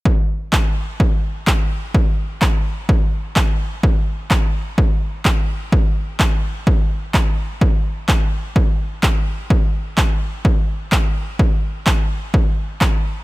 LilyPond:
\new DrumStaff \with { instrumentName = "Drums" } \drummode { \time 4/4 \tempo 4 = 127 bd4 <hc bd>4 bd4 <hc bd>4 | bd4 <hc bd>4 bd4 <hc bd>4 | bd4 <hc bd>4 bd4 <hc bd>4 | bd4 <hc bd>4 bd4 <hc bd>4 |
bd4 <hc bd>4 bd4 <hc bd>4 | bd4 <hc bd>4 bd4 <hc bd>4 | bd4 <hc bd>4 bd4 <hc bd>4 | }